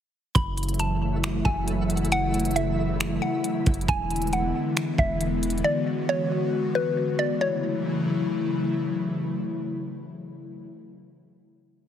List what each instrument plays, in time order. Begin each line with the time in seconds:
0.35 808-style bass F#1, analog synth pad C#3 E3 F#3 A3 E4, synth texture A3 F#4 E5, synth pluck B5, kick, closed hi-hat
0.57 closed hi-hat
0.63 closed hi-hat
0.69 closed hi-hat
0.74 closed hi-hat
0.79 synth pluck A5, closed hi-hat
1.24 finger snap, closed hi-hat
1.45 808-style bass F#1, synth pluck G#5, kick
1.68 closed hi-hat
1.90 closed hi-hat
1.97 closed hi-hat
2.05 closed hi-hat
2.12 synth texture E4, synth pluck F#5, closed hi-hat
2.34 closed hi-hat
2.40 closed hi-hat
2.45 closed hi-hat
2.51 closed hi-hat
2.56 synth pluck E5, closed hi-hat
3.00 finger snap, closed hi-hat
3.22 synth pluck F#5
3.44 closed hi-hat
3.66 808-style bass F#1, kick, closed hi-hat
3.74 closed hi-hat
3.81 closed hi-hat
3.88 808-style bass E1, analog synth pad D3 E3 G#3 B3, synth pluck G#5, kick, closed hi-hat
4.11 closed hi-hat
4.16 closed hi-hat
4.22 closed hi-hat
4.27 closed hi-hat
4.33 synth pluck F#5, closed hi-hat
4.77 finger snap, closed hi-hat
4.98 808-style bass E1, synth pluck E5, kick
5.21 closed hi-hat
5.43 closed hi-hat
5.50 closed hi-hat
5.58 closed hi-hat
5.64 analog synth pad F#4, synth pluck D5
6.09 synth pluck C#5
6.75 synth pluck B4
7.19 synth pluck D5
7.41 analog synth pad C#3 E3 F#3 A3 E4, synth pluck C#5